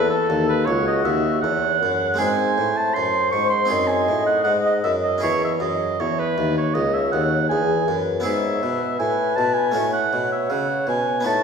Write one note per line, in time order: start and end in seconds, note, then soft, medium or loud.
0.00 0.26 E2 medium
0.00 0.31 E2 medium
0.00 2.15 F#4 medium
0.00 0.69 A4 medium
0.00 2.15 A4 medium
0.10 0.48 A4 medium
0.29 0.69 D#2 medium
0.29 0.64 D#2 medium
0.49 0.67 B4 medium
0.66 1.04 C#2 medium
0.66 1.02 C#2 medium
0.66 1.45 F#4 medium
0.66 0.86 C#5 medium
0.88 1.04 D#5 medium
1.05 1.42 D#2 medium
1.05 1.40 D#2 medium
1.05 1.41 E5 medium
1.42 1.80 E2 medium
1.42 1.78 E2 medium
1.42 2.19 C#5 medium
1.42 2.20 F#5 medium
1.81 2.18 F#2 medium
1.81 2.16 F#2 medium
2.14 2.54 G#3 medium
2.14 2.54 C4 soft
2.14 2.55 D#4 soft
2.18 2.54 G#2 medium
2.18 2.59 G#2 medium
2.18 3.66 G#4 medium
2.18 2.94 C5 medium
2.18 2.79 G#5 loud
2.58 2.95 A2 medium
2.58 2.92 A2 medium
2.77 2.95 A5 medium
2.94 3.32 F#2 medium
2.94 3.30 F#2 medium
2.94 3.73 C5 medium
2.94 3.31 C6 medium
3.32 3.67 G#2 medium
3.32 3.73 G#2 medium
3.32 3.49 C#6 medium
3.50 3.89 C6 medium
3.65 4.04 C4 soft
3.65 5.16 D#4 soft
3.65 5.17 G#4 soft
3.70 4.04 F#2 medium
3.70 4.10 F#2 medium
3.70 5.71 D#5 medium
3.88 4.26 G#5 medium
4.08 4.42 A2 medium
4.08 4.46 A2 medium
4.27 4.43 F#5 medium
4.44 4.80 G#2 medium
4.44 4.84 G#2 medium
4.44 4.53 F#5 medium
4.66 4.75 D#5 medium
4.84 5.18 F#2 soft
4.84 5.22 F#2 medium
4.84 4.93 E5 medium
5.04 5.22 D#5 medium
5.18 8.18 C#4 soft
5.18 8.19 E4 soft
5.18 8.20 G#4 soft
5.23 5.63 E2 medium
5.23 5.57 E2 soft
5.23 5.41 C#5 medium
5.45 5.53 E5 medium
5.60 5.95 F#2 soft
5.60 5.99 F#2 medium
5.60 6.02 D#5 medium
5.99 6.36 E2 medium
5.99 6.33 E2 medium
5.99 6.21 C#5 medium
5.99 6.70 E5 medium
6.19 6.56 B4 medium
6.37 6.74 D#2 medium
6.37 6.71 D#2 medium
6.58 6.76 C#5 medium
6.74 7.11 C#2 medium
6.74 7.09 C#2 medium
6.74 7.48 C#5 medium
6.74 6.95 D#5 medium
6.94 7.11 E5 medium
7.12 7.49 D#2 medium
7.12 7.47 D#2 medium
7.12 7.49 F#5 medium
7.48 7.87 E2 medium
7.48 7.84 E2 soft
7.48 7.89 G#4 medium
7.48 7.97 G#5 medium
7.88 8.24 F#2 medium
7.88 8.21 F#2 medium
7.88 8.25 B4 medium
8.20 9.68 B3 soft
8.20 9.69 E4 soft
8.20 9.70 G#4 soft
8.20 8.64 C#5 medium
8.20 8.95 E5 medium
8.24 8.58 G#2 soft
8.24 8.61 G#2 medium
8.62 8.99 B2 medium
8.62 8.96 B2 medium
8.62 9.00 B4 medium
9.00 9.36 A2 medium
9.00 9.34 A2 medium
9.00 9.74 B4 medium
9.00 9.38 G#5 medium
9.36 9.74 B2 medium
9.36 9.72 B2 medium
9.36 9.55 A5 medium
9.54 9.92 G#5 medium
9.71 10.12 A2 medium
9.71 11.19 A3 soft
9.71 11.20 C#4 soft
9.71 11.21 F#4 soft
9.76 10.09 A2 medium
9.76 11.22 C#5 medium
9.93 10.30 F#5 medium
10.13 10.46 B2 medium
10.13 10.50 B2 medium
10.32 10.52 E5 medium
10.50 10.84 C#3 soft
10.50 10.87 C#3 medium
10.50 10.88 F#5 medium
10.87 11.21 B2 medium
10.87 11.25 B2 medium
10.87 11.25 G#5 medium
11.20 11.43 B3 soft
11.20 11.43 D#4 soft
11.20 11.43 F#4 soft
11.25 11.43 A2 medium
11.25 11.43 C#5 medium
11.25 11.43 A5 medium